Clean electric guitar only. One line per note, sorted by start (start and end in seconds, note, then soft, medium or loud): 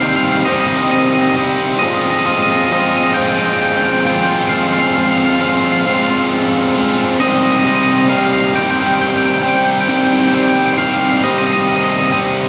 0.00 0.07 F5 loud
0.08 0.16 F5 medium
0.16 0.23 F5 medium
0.24 0.32 F5 medium
0.32 0.40 F5 medium
0.40 0.45 F5 medium
0.45 0.52 D#5 medium
0.53 0.60 D#5 medium
0.60 0.68 D#5 medium
0.68 0.76 D#5 medium
0.76 0.82 D#5 medium
0.82 0.90 D#5 medium
0.91 0.98 D#5 medium
0.98 1.06 D#5 medium
1.06 1.13 D#5 medium
1.14 1.21 D#5 medium
1.21 1.29 D#5 medium
1.29 1.36 D#5 medium
1.36 1.44 D#5 medium
1.79 1.86 D#5 medium
1.86 1.94 D#5 medium
1.94 2.01 D#5 medium
2.02 2.10 D#5 medium
2.10 2.18 D#5 medium
2.19 2.26 D#5 medium
2.26 2.33 D#5 medium
2.33 2.41 D#5 medium
2.42 2.49 D#5 medium
2.50 2.57 D#5 medium
2.57 2.65 D#5 medium
2.65 2.72 D#5 medium
2.73 2.80 D#5 medium
2.80 2.88 D#5 medium
2.89 2.96 D#5 medium
2.97 3.03 D#5 medium
3.03 3.11 D#5 medium
3.14 3.21 G5 loud
3.21 3.29 G5 medium
3.29 3.37 G5 medium
3.39 3.45 G5 medium
3.45 3.53 G5 medium
3.53 3.61 G5 medium
3.62 3.68 G5 loud
3.69 3.77 G5 medium
3.77 3.84 G5 loud
3.85 3.92 G5 medium
3.93 4.00 G5 medium
4.00 4.06 G5 medium
4.07 4.14 G5 medium
4.15 4.22 G5 medium
4.23 4.31 G5 medium
4.31 4.38 G5 medium
4.39 4.46 G5 medium
4.47 4.57 F5 medium
4.47 4.49 G5 medium
4.57 4.64 F5 medium
4.64 4.72 F5 medium
4.72 4.79 F5 medium
4.79 4.87 F5 medium
4.88 4.94 F5 medium
4.94 5.02 F5 medium
5.03 5.11 F5 medium
5.11 5.17 F5 medium
5.18 5.25 F5 medium
5.26 5.32 F5 medium
5.33 5.40 F5 medium
5.41 5.48 F5 medium
5.49 5.57 F5 medium
5.57 5.64 F5 medium
5.64 5.72 F5 medium
5.72 5.79 F5 medium
5.79 5.87 F5 medium
5.87 5.94 F5 medium
5.94 6.02 F5 medium
6.04 6.10 F5 medium
6.19 6.26 F5 medium
7.20 7.28 D#5 medium
7.29 7.35 D#5 medium
7.35 7.43 D#5 medium
7.43 7.51 D#5 medium
7.52 7.59 D#5 medium
7.59 7.66 D#5 medium
7.67 7.74 D#5 medium
7.75 7.82 D#5 medium
7.83 7.89 D#5 medium
7.90 7.98 D#5 medium
7.98 8.06 D#5 medium
8.09 8.17 F5 medium
8.17 8.24 F5 medium
8.25 8.32 F5 medium
8.33 8.40 F5 medium
8.40 8.48 F5 medium
8.48 8.55 F5 medium
8.56 8.63 G5 loud
8.63 8.70 G5 medium
8.70 8.78 G5 medium
8.80 8.86 G5 medium
8.87 8.94 G5 medium
8.95 9.01 G5 medium
9.01 9.09 G5 loud
9.10 9.17 G5 medium
9.18 9.25 G5 medium
9.25 9.33 G5 medium
9.34 9.41 G5 loud
9.42 9.48 G5 medium
9.48 9.55 G5 medium
9.56 9.63 G5 medium
9.65 9.71 G5 medium
9.71 9.79 G5 medium
9.80 9.88 G5 medium
9.89 9.97 G5 loud
9.97 10.04 G5 medium
10.05 10.12 G5 loud
10.12 10.20 G5 medium
10.20 10.27 G5 loud
10.27 10.34 G5 medium
10.35 10.42 G5 medium
10.43 10.49 G5 medium
10.49 10.57 G5 loud
10.59 10.65 G5 medium
10.66 10.73 G5 medium
10.74 10.77 G5 medium
10.78 10.85 F5 medium
10.85 10.93 F5 medium
10.94 11.01 F5 medium
11.01 11.09 F5 medium
11.09 11.17 F5 medium
11.17 11.23 F5 medium
11.24 11.31 D#5 medium
11.31 11.38 D#5 medium
11.38 11.45 D#5 medium
11.46 11.53 D#5 medium
11.53 11.60 D#5 medium
11.61 11.68 D#5 medium
11.69 11.76 D#5 medium
11.76 11.83 D#5 medium
11.84 11.91 D#5 medium
11.92 11.98 D#5 medium
11.98 12.05 D#5 medium
12.06 12.12 D#5 medium
12.12 12.20 D#5 medium